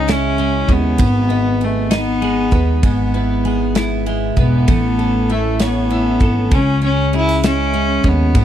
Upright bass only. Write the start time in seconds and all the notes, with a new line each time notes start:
Already playing: C#2
0.69 D#2
0.99 G#1
2.52 D#2
2.83 G#1
4.37 E1
4.68 A1
6.21 G#1
6.52 C#2
8.04 D#2
8.35 G#1